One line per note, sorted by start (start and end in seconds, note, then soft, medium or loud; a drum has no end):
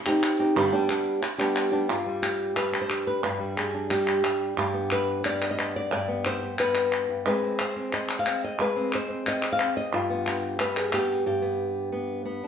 0.06 0.40 C4 soft
0.06 0.39 D#4 medium
0.06 0.38 G4 medium
0.06 clap medium
0.23 clap medium
0.39 0.56 C4 soft
0.39 0.56 D#4 soft
0.39 0.55 G4 soft
0.56 0.72 G2 medium
0.56 0.72 D3 medium
0.56 0.72 G3 medium
0.56 0.72 B3 medium
0.56 0.72 D4 medium
0.56 0.72 G4 medium
0.56 clap soft
0.73 0.88 G3 soft
0.73 0.89 B3 soft
0.73 0.89 D4 medium
0.73 0.89 G4 medium
0.89 1.21 G3 soft
0.89 1.22 B3 medium
0.89 1.22 D4 medium
0.89 1.22 G4 medium
0.89 clap medium
1.22 muted nylon-string guitar stroke medium
1.22 clap medium
1.38 1.73 G3 soft
1.38 1.72 B3 soft
1.38 1.71 D4 soft
1.38 1.71 G4 medium
1.38 clap medium
1.56 clap medium
1.72 1.89 G3 soft
1.72 1.89 B3 soft
1.72 1.89 D4 soft
1.72 1.88 G4 soft
1.89 3.23 G2 medium
1.89 2.56 F4 medium
1.89 clap soft
2.07 2.55 G3 medium
2.22 2.56 G4 medium
2.22 clap medium
2.56 2.89 G3 medium
2.56 2.81 B4 medium
2.56 clap medium
2.72 3.60 D4 soft
2.72 clap medium
2.82 3.07 C5 medium
2.90 3.40 G3 soft
2.90 clap medium
3.07 3.22 B4 medium
3.24 4.57 G2 medium
3.24 3.57 B4 medium
3.24 clap soft
3.40 3.89 G3 medium
3.57 3.91 G#4 medium
3.57 clap medium
3.74 5.92 D4 soft
3.90 4.23 G3 medium
3.90 4.57 G4 medium
3.90 clap medium
4.07 clap medium
4.24 4.73 G3 medium
4.24 clap medium
4.57 5.90 G2 medium
4.57 4.91 G4 medium
4.74 5.22 B3 medium
4.91 5.25 B4 medium
4.91 clap medium
5.23 5.57 B3 medium
5.23 5.50 D5 medium
5.23 clap medium
5.42 clap medium
5.51 5.75 D#5 medium
5.58 5.90 B3 medium
5.58 clap medium
5.76 5.92 D5 medium
5.91 7.08 G2 medium
5.91 6.26 D5 medium
5.91 clap soft
6.08 6.57 B3 medium
6.25 6.59 C5 medium
6.25 clap medium
6.43 7.24 G4 soft
6.58 7.23 B3 medium
6.58 7.26 B4 medium
6.58 clap medium
6.74 clap medium
6.92 clap medium
7.09 7.26 G2 soft
7.26 8.57 G#3 medium
7.26 7.42 C4 soft
7.26 7.60 B4 medium
7.42 7.76 C4 soft
7.59 8.27 C5 medium
7.59 clap medium
7.76 7.91 C4 soft
7.92 8.25 C4 medium
7.92 8.18 D#5 medium
7.92 clap medium
8.09 clap medium
8.19 8.43 F5 medium
8.26 8.58 C4 soft
8.26 clap medium
8.44 8.94 D#5 medium
8.59 9.91 G#3 medium
8.59 8.94 B4 medium
8.76 9.09 C4 medium
8.92 9.61 C5 medium
8.92 clap medium
9.10 9.25 C4 soft
9.26 9.58 C4 medium
9.26 9.52 D#5 medium
9.26 clap medium
9.43 clap medium
9.53 9.76 F5 medium
9.59 9.91 C4 medium
9.59 clap medium
9.77 9.93 D#5 medium
9.93 11.26 G2 medium
9.93 10.60 F4 medium
10.10 10.59 B3 medium
10.27 10.92 G4 medium
10.27 clap medium
10.59 10.93 B3 medium
10.59 10.77 B4 medium
10.59 clap medium
10.76 10.93 G#4 medium
10.76 clap medium
10.92 11.42 B3 medium
10.92 11.25 G4 medium
10.92 clap medium
11.11 11.27 G#4 medium
11.26 12.47 G2 medium
11.26 12.47 G4 medium
11.42 11.91 B3 medium
11.92 12.24 B3 medium
12.25 12.47 B3 medium
12.44 12.47 D4 soft